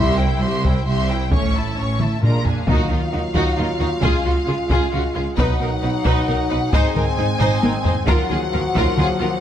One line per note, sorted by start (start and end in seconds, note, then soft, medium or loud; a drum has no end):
0.00 0.36 C2 medium
0.00 0.12 G3 medium
0.00 0.12 E4 medium
0.00 0.18 G4 medium
0.00 0.17 E5 medium
0.00 0.18 C6 medium
0.18 0.42 E4 medium
0.18 0.41 C5 soft
0.18 0.41 G5 medium
0.41 0.81 C2 medium
0.41 0.82 C2 medium
0.41 0.64 G4 medium
0.41 0.64 E5 medium
0.41 0.64 C6 medium
0.65 0.87 E4 medium
0.65 0.87 C5 soft
0.65 0.87 G5 soft
0.65 taiko medium
0.86 1.26 C2 medium
0.86 1.27 C2 medium
0.86 1.08 G4 soft
0.86 1.07 E5 medium
0.86 1.08 C6 medium
1.09 1.32 E4 soft
1.09 1.32 C5 soft
1.09 1.32 G5 soft
1.32 1.72 A1 medium
1.32 1.72 A2 medium
1.32 1.48 A3 medium
1.32 1.48 C#4 medium
1.32 1.53 C#4 medium
1.32 1.53 C#5 soft
1.32 1.53 C#6 medium
1.32 taiko medium
1.54 1.77 E4 soft
1.54 1.77 E5 soft
1.54 1.78 A5 soft
1.77 2.17 A1 medium
1.77 2.17 A2 medium
1.77 2.00 C#4 soft
1.77 2.00 C#5 soft
1.77 2.01 C#6 soft
2.00 2.22 E4 soft
2.00 2.22 E5 soft
2.00 2.23 A5 soft
2.00 taiko mid medium
2.22 2.62 A#1 soft
2.22 2.62 A#2 medium
2.22 2.39 G#3 soft
2.22 2.39 D4 soft
2.22 2.43 F4 soft
2.22 2.44 A#4 soft
2.22 2.45 A#5 soft
2.22 taiko low-mid medium
2.45 2.67 D4 soft
2.45 2.68 G#4 soft
2.45 2.68 G#5 soft
2.45 taiko low medium
2.67 2.76 D#2 medium
2.67 2.75 D#3 medium
2.67 3.31 D#3 medium
2.67 3.99 F#3 medium
2.67 2.88 D#4 medium
2.67 5.35 F4 medium
2.67 2.89 F#4 medium
2.67 5.34 F5 soft
2.67 taiko medium
2.90 2.98 D#2 soft
2.90 2.98 D#3 soft
2.90 2.98 D#4 soft
2.90 3.00 F4 soft
3.12 3.21 D#2 soft
3.12 3.20 D#3 soft
3.12 3.21 D#4 soft
3.12 3.21 F#4 soft
3.34 3.43 D#2 medium
3.34 3.42 D#3 medium
3.34 3.56 D#4 soft
3.34 3.56 F#4 medium
3.34 taiko medium
3.57 3.66 D#2 soft
3.57 3.65 D#3 soft
3.57 3.66 D#4 soft
3.57 3.66 F4 soft
3.79 3.88 D#2 soft
3.79 3.87 D#3 soft
3.79 3.88 D#4 soft
3.79 3.88 F#4 medium
4.02 4.10 C#2 medium
4.02 4.10 C#3 medium
4.02 5.38 G#3 medium
4.02 4.24 F4 medium
4.02 4.23 G#4 medium
4.02 taiko loud
4.25 4.33 C#2 soft
4.25 4.33 C#3 soft
4.25 4.33 F4 soft
4.25 4.33 F#4 soft
4.47 4.56 C#2 soft
4.47 4.55 C#3 soft
4.47 4.57 F4 soft
4.47 4.55 G#4 soft
4.69 4.79 C#2 medium
4.69 4.77 C#3 medium
4.69 4.91 F4 medium
4.69 4.91 G#4 medium
4.69 taiko medium
4.92 5.01 C#2 soft
4.92 5.00 C#3 medium
4.92 5.00 F4 soft
4.92 5.01 F#4 medium
5.15 5.24 C#2 medium
5.15 5.23 C#3 soft
5.15 5.23 F4 soft
5.15 5.23 G#4 soft
5.37 5.46 B1 medium
5.37 5.46 B2 medium
5.37 6.71 F#3 medium
5.37 5.59 D#4 medium
5.37 6.71 D#4 medium
5.37 5.59 B4 medium
5.37 6.71 F#5 medium
5.37 taiko medium
5.60 5.68 B1 soft
5.60 5.68 B2 medium
5.60 5.69 D#4 soft
5.60 5.69 A#4 soft
5.82 5.90 B1 medium
5.82 5.91 B2 medium
5.82 5.90 D#4 soft
5.82 5.91 B4 medium
6.05 6.14 B1 medium
6.05 6.13 B2 medium
6.05 6.27 D#4 medium
6.05 6.26 B4 medium
6.05 taiko medium
6.28 6.36 B1 medium
6.28 6.36 B2 medium
6.28 6.36 D#4 medium
6.28 6.36 A#4 medium
6.50 6.58 B1 medium
6.50 6.59 B2 medium
6.50 6.58 D#4 medium
6.50 6.59 B4 medium
6.72 6.80 G#1 medium
6.72 6.82 G#2 medium
6.72 8.06 G#3 medium
6.72 8.06 C4 medium
6.72 6.94 D#4 medium
6.72 6.94 C5 medium
6.72 8.09 G#5 medium
6.72 taiko loud
6.95 7.03 G#1 medium
6.95 7.04 G#2 medium
6.95 7.03 D#4 medium
6.95 7.04 A#4 medium
6.95 taiko mid soft
7.17 7.26 G#1 medium
7.17 7.25 G#2 medium
7.17 7.26 D#4 medium
7.17 7.27 C5 soft
7.40 7.48 G#1 medium
7.40 7.48 G#2 medium
7.40 7.61 D#4 medium
7.40 7.62 C5 medium
7.40 taiko low-mid medium
7.62 7.71 G#1 medium
7.62 7.71 G#2 medium
7.62 7.70 D#4 medium
7.62 7.72 A#4 soft
7.62 taiko high medium
7.84 7.93 G#1 medium
7.84 7.93 G#2 medium
7.84 7.93 D#4 medium
7.84 7.92 C5 medium
7.84 taiko low medium
8.07 8.16 D#2 medium
8.07 8.15 D#3 medium
8.07 9.40 F3 medium
8.07 9.40 F#3 medium
8.07 8.28 F4 medium
8.07 8.29 A#4 medium
8.07 9.40 F#5 medium
8.07 taiko medium
8.30 8.39 D#2 medium
8.30 8.38 D#3 medium
8.30 8.38 F4 soft
8.30 8.38 G#4 soft
8.30 taiko mid soft
8.52 8.61 D#2 medium
8.52 8.61 D#3 medium
8.52 8.60 F4 medium
8.52 8.61 A#4 medium
8.75 8.84 D#2 medium
8.75 8.83 D#3 medium
8.75 8.97 F4 medium
8.75 8.97 A#4 medium
8.75 taiko medium
8.97 9.06 D#2 medium
8.97 9.06 D#3 medium
8.97 9.06 F4 medium
8.97 9.07 G#4 medium
8.97 taiko mid medium
9.20 9.29 D#2 medium
9.20 9.29 D#3 medium
9.20 9.28 F4 medium
9.20 9.29 A#4 medium